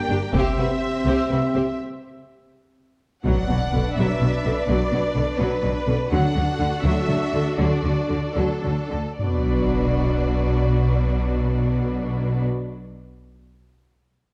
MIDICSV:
0, 0, Header, 1, 12, 480
1, 0, Start_track
1, 0, Tempo, 482703
1, 337, Time_signature, 6, 3, 24, 8
1, 7541, Tempo, 525394
1, 8501, Tempo, 561272
1, 13377, End_track
2, 0, Start_track
2, 0, Title_t, "Trumpet section"
2, 0, Program_c, 0, 61
2, 0, Note_on_c, 0, 79, 88
2, 170, Note_off_c, 0, 79, 0
2, 339, Note_on_c, 0, 76, 82
2, 1753, Note_off_c, 0, 76, 0
2, 13377, End_track
3, 0, Start_track
3, 0, Title_t, "Violin section"
3, 0, Program_c, 1, 48
3, 0, Note_on_c, 1, 79, 76
3, 331, Note_off_c, 1, 79, 0
3, 360, Note_on_c, 1, 76, 78
3, 1764, Note_off_c, 1, 76, 0
3, 3228, Note_on_c, 1, 78, 66
3, 3905, Note_off_c, 1, 78, 0
3, 3952, Note_on_c, 1, 76, 65
3, 4656, Note_off_c, 1, 76, 0
3, 4658, Note_on_c, 1, 74, 71
3, 5346, Note_off_c, 1, 74, 0
3, 5357, Note_on_c, 1, 71, 69
3, 6076, Note_off_c, 1, 71, 0
3, 6084, Note_on_c, 1, 78, 76
3, 6789, Note_off_c, 1, 78, 0
3, 6807, Note_on_c, 1, 76, 71
3, 7542, Note_off_c, 1, 76, 0
3, 7544, Note_on_c, 1, 74, 65
3, 8240, Note_off_c, 1, 74, 0
3, 8251, Note_on_c, 1, 69, 50
3, 8973, Note_on_c, 1, 74, 47
3, 8978, Note_off_c, 1, 69, 0
3, 11744, Note_off_c, 1, 74, 0
3, 13377, End_track
4, 0, Start_track
4, 0, Title_t, "String section"
4, 0, Program_c, 2, 48
4, 0, Note_on_c, 2, 62, 68
4, 0, Note_on_c, 2, 67, 74
4, 0, Note_on_c, 2, 70, 70
4, 0, Note_on_c, 2, 74, 70
4, 301, Note_off_c, 2, 74, 0
4, 302, Note_off_c, 2, 62, 0
4, 334, Note_on_c, 2, 76, 68
4, 340, Note_on_c, 2, 60, 67
4, 341, Note_on_c, 2, 72, 70
4, 343, Note_off_c, 2, 70, 0
4, 1780, Note_off_c, 2, 76, 0
4, 1783, Note_off_c, 2, 60, 0
4, 1783, Note_off_c, 2, 72, 0
4, 1784, Note_off_c, 2, 67, 0
4, 13377, End_track
5, 0, Start_track
5, 0, Title_t, "Violin section"
5, 0, Program_c, 3, 48
5, 109, Note_on_c, 3, 67, 45
5, 112, Note_on_c, 3, 70, 46
5, 189, Note_off_c, 3, 67, 0
5, 192, Note_off_c, 3, 70, 0
5, 339, Note_on_c, 3, 67, 71
5, 342, Note_on_c, 3, 72, 61
5, 559, Note_off_c, 3, 67, 0
5, 560, Note_off_c, 3, 72, 0
5, 572, Note_on_c, 3, 66, 39
5, 578, Note_on_c, 3, 71, 45
5, 652, Note_off_c, 3, 66, 0
5, 657, Note_off_c, 3, 71, 0
5, 1064, Note_on_c, 3, 67, 47
5, 1064, Note_on_c, 3, 72, 54
5, 1283, Note_off_c, 3, 67, 0
5, 1283, Note_off_c, 3, 72, 0
5, 1291, Note_on_c, 3, 71, 31
5, 1294, Note_on_c, 3, 66, 33
5, 1371, Note_off_c, 3, 71, 0
5, 1373, Note_off_c, 3, 66, 0
5, 1535, Note_on_c, 3, 72, 42
5, 1540, Note_on_c, 3, 67, 42
5, 1615, Note_off_c, 3, 72, 0
5, 1620, Note_off_c, 3, 67, 0
5, 3242, Note_on_c, 3, 74, 49
5, 3250, Note_on_c, 3, 71, 48
5, 6039, Note_off_c, 3, 74, 0
5, 6043, Note_off_c, 3, 71, 0
5, 6083, Note_on_c, 3, 66, 51
5, 6084, Note_on_c, 3, 69, 49
5, 8745, Note_off_c, 3, 69, 0
5, 8779, Note_off_c, 3, 66, 0
5, 8983, Note_on_c, 3, 71, 41
5, 8984, Note_on_c, 3, 66, 38
5, 11754, Note_off_c, 3, 71, 0
5, 11755, Note_off_c, 3, 66, 0
5, 13377, End_track
6, 0, Start_track
6, 0, Title_t, "French horn section"
6, 0, Program_c, 4, 60
6, 0, Note_on_c, 4, 58, 59
6, 0, Note_on_c, 4, 67, 62
6, 173, Note_off_c, 4, 58, 0
6, 173, Note_off_c, 4, 67, 0
6, 342, Note_on_c, 4, 60, 56
6, 343, Note_on_c, 4, 67, 61
6, 1744, Note_off_c, 4, 60, 0
6, 1744, Note_off_c, 4, 67, 0
6, 13377, End_track
7, 0, Start_track
7, 0, Title_t, "Viola section"
7, 0, Program_c, 5, 48
7, 102, Note_on_c, 5, 62, 56
7, 106, Note_on_c, 5, 67, 51
7, 181, Note_off_c, 5, 62, 0
7, 185, Note_off_c, 5, 67, 0
7, 338, Note_on_c, 5, 60, 61
7, 343, Note_on_c, 5, 67, 53
7, 558, Note_off_c, 5, 60, 0
7, 561, Note_off_c, 5, 67, 0
7, 582, Note_on_c, 5, 67, 41
7, 587, Note_on_c, 5, 60, 42
7, 662, Note_off_c, 5, 67, 0
7, 667, Note_off_c, 5, 60, 0
7, 1056, Note_on_c, 5, 67, 48
7, 1057, Note_on_c, 5, 60, 50
7, 1279, Note_off_c, 5, 60, 0
7, 1279, Note_off_c, 5, 67, 0
7, 1303, Note_on_c, 5, 60, 40
7, 1303, Note_on_c, 5, 67, 38
7, 1382, Note_off_c, 5, 60, 0
7, 1382, Note_off_c, 5, 67, 0
7, 1535, Note_on_c, 5, 60, 42
7, 1542, Note_on_c, 5, 67, 41
7, 1615, Note_off_c, 5, 60, 0
7, 1622, Note_off_c, 5, 67, 0
7, 3236, Note_on_c, 5, 54, 48
7, 3241, Note_on_c, 5, 62, 40
7, 3459, Note_off_c, 5, 54, 0
7, 3480, Note_on_c, 5, 54, 31
7, 3560, Note_off_c, 5, 54, 0
7, 3717, Note_on_c, 5, 50, 34
7, 3796, Note_off_c, 5, 50, 0
7, 3959, Note_on_c, 5, 54, 46
7, 4174, Note_off_c, 5, 54, 0
7, 4195, Note_on_c, 5, 54, 38
7, 4275, Note_off_c, 5, 54, 0
7, 4428, Note_on_c, 5, 50, 38
7, 4507, Note_off_c, 5, 50, 0
7, 4658, Note_on_c, 5, 54, 42
7, 4875, Note_off_c, 5, 54, 0
7, 4905, Note_on_c, 5, 54, 33
7, 4985, Note_off_c, 5, 54, 0
7, 5127, Note_on_c, 5, 50, 33
7, 5207, Note_off_c, 5, 50, 0
7, 5359, Note_on_c, 5, 54, 50
7, 5579, Note_off_c, 5, 54, 0
7, 5595, Note_on_c, 5, 54, 42
7, 5675, Note_off_c, 5, 54, 0
7, 5833, Note_on_c, 5, 50, 44
7, 5913, Note_off_c, 5, 50, 0
7, 6038, Note_off_c, 5, 62, 0
7, 6077, Note_on_c, 5, 62, 44
7, 6078, Note_on_c, 5, 54, 41
7, 6302, Note_off_c, 5, 54, 0
7, 6323, Note_on_c, 5, 54, 37
7, 6402, Note_off_c, 5, 54, 0
7, 6566, Note_on_c, 5, 50, 35
7, 6646, Note_off_c, 5, 50, 0
7, 6802, Note_on_c, 5, 54, 48
7, 7027, Note_off_c, 5, 54, 0
7, 7044, Note_on_c, 5, 54, 39
7, 7124, Note_off_c, 5, 54, 0
7, 7296, Note_on_c, 5, 50, 37
7, 7375, Note_off_c, 5, 50, 0
7, 7538, Note_on_c, 5, 54, 42
7, 7756, Note_off_c, 5, 54, 0
7, 7778, Note_on_c, 5, 54, 27
7, 7851, Note_off_c, 5, 54, 0
7, 8002, Note_on_c, 5, 50, 30
7, 8075, Note_off_c, 5, 50, 0
7, 8242, Note_on_c, 5, 54, 43
7, 8477, Note_off_c, 5, 54, 0
7, 8494, Note_on_c, 5, 54, 27
7, 8563, Note_off_c, 5, 54, 0
7, 8736, Note_on_c, 5, 50, 34
7, 8742, Note_off_c, 5, 62, 0
7, 8804, Note_off_c, 5, 50, 0
7, 8969, Note_on_c, 5, 54, 30
7, 8973, Note_on_c, 5, 62, 32
7, 11740, Note_off_c, 5, 54, 0
7, 11744, Note_off_c, 5, 62, 0
7, 13377, End_track
8, 0, Start_track
8, 0, Title_t, "Cello section"
8, 0, Program_c, 6, 48
8, 104, Note_on_c, 6, 43, 43
8, 184, Note_off_c, 6, 43, 0
8, 337, Note_on_c, 6, 48, 71
8, 417, Note_off_c, 6, 48, 0
8, 572, Note_on_c, 6, 48, 46
8, 652, Note_off_c, 6, 48, 0
8, 1053, Note_on_c, 6, 48, 54
8, 1133, Note_off_c, 6, 48, 0
8, 1302, Note_on_c, 6, 48, 39
8, 1382, Note_off_c, 6, 48, 0
8, 1543, Note_on_c, 6, 48, 36
8, 1623, Note_off_c, 6, 48, 0
8, 3239, Note_on_c, 6, 47, 53
8, 3319, Note_off_c, 6, 47, 0
8, 3479, Note_on_c, 6, 47, 38
8, 3559, Note_off_c, 6, 47, 0
8, 3713, Note_on_c, 6, 47, 41
8, 3792, Note_off_c, 6, 47, 0
8, 3944, Note_on_c, 6, 47, 47
8, 4024, Note_off_c, 6, 47, 0
8, 4178, Note_on_c, 6, 47, 36
8, 4258, Note_off_c, 6, 47, 0
8, 4417, Note_on_c, 6, 47, 33
8, 4496, Note_off_c, 6, 47, 0
8, 4653, Note_on_c, 6, 47, 57
8, 4733, Note_off_c, 6, 47, 0
8, 4894, Note_on_c, 6, 47, 43
8, 4974, Note_off_c, 6, 47, 0
8, 5128, Note_on_c, 6, 47, 43
8, 5207, Note_off_c, 6, 47, 0
8, 5358, Note_on_c, 6, 47, 50
8, 5437, Note_off_c, 6, 47, 0
8, 5599, Note_on_c, 6, 47, 39
8, 5679, Note_off_c, 6, 47, 0
8, 5836, Note_on_c, 6, 47, 38
8, 5916, Note_off_c, 6, 47, 0
8, 6075, Note_on_c, 6, 50, 62
8, 6154, Note_off_c, 6, 50, 0
8, 6311, Note_on_c, 6, 50, 43
8, 6391, Note_off_c, 6, 50, 0
8, 6555, Note_on_c, 6, 50, 42
8, 6634, Note_off_c, 6, 50, 0
8, 6786, Note_on_c, 6, 50, 55
8, 6866, Note_off_c, 6, 50, 0
8, 7032, Note_on_c, 6, 50, 38
8, 7112, Note_off_c, 6, 50, 0
8, 7281, Note_on_c, 6, 50, 39
8, 7361, Note_off_c, 6, 50, 0
8, 7536, Note_on_c, 6, 50, 55
8, 7609, Note_off_c, 6, 50, 0
8, 7770, Note_on_c, 6, 50, 38
8, 7844, Note_off_c, 6, 50, 0
8, 8007, Note_on_c, 6, 50, 35
8, 8080, Note_off_c, 6, 50, 0
8, 8247, Note_on_c, 6, 50, 40
8, 8320, Note_off_c, 6, 50, 0
8, 8502, Note_on_c, 6, 50, 29
8, 8570, Note_off_c, 6, 50, 0
8, 8739, Note_on_c, 6, 50, 26
8, 8807, Note_off_c, 6, 50, 0
8, 8973, Note_on_c, 6, 47, 42
8, 11744, Note_off_c, 6, 47, 0
8, 13377, End_track
9, 0, Start_track
9, 0, Title_t, "Double bass section"
9, 0, Program_c, 7, 48
9, 94, Note_on_c, 7, 31, 47
9, 174, Note_off_c, 7, 31, 0
9, 337, Note_on_c, 7, 36, 59
9, 416, Note_off_c, 7, 36, 0
9, 571, Note_on_c, 7, 36, 43
9, 651, Note_off_c, 7, 36, 0
9, 1045, Note_on_c, 7, 36, 60
9, 1124, Note_off_c, 7, 36, 0
9, 1298, Note_on_c, 7, 36, 40
9, 1378, Note_off_c, 7, 36, 0
9, 1541, Note_on_c, 7, 36, 34
9, 1621, Note_off_c, 7, 36, 0
9, 3234, Note_on_c, 7, 35, 51
9, 3314, Note_off_c, 7, 35, 0
9, 3473, Note_on_c, 7, 35, 37
9, 3553, Note_off_c, 7, 35, 0
9, 3711, Note_on_c, 7, 35, 39
9, 3791, Note_off_c, 7, 35, 0
9, 3955, Note_on_c, 7, 35, 57
9, 4035, Note_off_c, 7, 35, 0
9, 4185, Note_on_c, 7, 35, 38
9, 4265, Note_off_c, 7, 35, 0
9, 4422, Note_on_c, 7, 35, 37
9, 4502, Note_off_c, 7, 35, 0
9, 4648, Note_on_c, 7, 35, 52
9, 4728, Note_off_c, 7, 35, 0
9, 4891, Note_on_c, 7, 35, 39
9, 4970, Note_off_c, 7, 35, 0
9, 5127, Note_on_c, 7, 35, 40
9, 5207, Note_off_c, 7, 35, 0
9, 5359, Note_on_c, 7, 35, 57
9, 5439, Note_off_c, 7, 35, 0
9, 5609, Note_on_c, 7, 35, 43
9, 5688, Note_off_c, 7, 35, 0
9, 5840, Note_on_c, 7, 35, 36
9, 5919, Note_off_c, 7, 35, 0
9, 6081, Note_on_c, 7, 38, 53
9, 6161, Note_off_c, 7, 38, 0
9, 6324, Note_on_c, 7, 38, 41
9, 6404, Note_off_c, 7, 38, 0
9, 6567, Note_on_c, 7, 38, 41
9, 6647, Note_off_c, 7, 38, 0
9, 6801, Note_on_c, 7, 38, 59
9, 6881, Note_off_c, 7, 38, 0
9, 7045, Note_on_c, 7, 38, 40
9, 7124, Note_off_c, 7, 38, 0
9, 7292, Note_on_c, 7, 38, 34
9, 7371, Note_off_c, 7, 38, 0
9, 7545, Note_on_c, 7, 38, 52
9, 7618, Note_off_c, 7, 38, 0
9, 7778, Note_on_c, 7, 38, 34
9, 7851, Note_off_c, 7, 38, 0
9, 8015, Note_on_c, 7, 38, 34
9, 8088, Note_off_c, 7, 38, 0
9, 8257, Note_on_c, 7, 38, 44
9, 8330, Note_off_c, 7, 38, 0
9, 8511, Note_on_c, 7, 38, 31
9, 8580, Note_off_c, 7, 38, 0
9, 8745, Note_on_c, 7, 38, 27
9, 8814, Note_off_c, 7, 38, 0
9, 8984, Note_on_c, 7, 35, 36
9, 11754, Note_off_c, 7, 35, 0
9, 13377, End_track
10, 0, Start_track
10, 0, Title_t, "Impact"
10, 0, Program_c, 8, 103
10, 3238, Note_on_c, 8, 60, 48
10, 4654, Note_off_c, 8, 60, 0
10, 13377, End_track
11, 0, Start_track
11, 0, Title_t, "Sub drop"
11, 0, Program_c, 10, 103
11, 8978, Note_on_c, 10, 60, 34
11, 10414, Note_off_c, 10, 60, 0
11, 13377, End_track
12, 0, Start_track
12, 0, Title_t, "Taiko and cinematic ensemble drums"
12, 329, Note_on_c, 9, 41, 82
12, 429, Note_off_c, 9, 41, 0
12, 13377, End_track
0, 0, End_of_file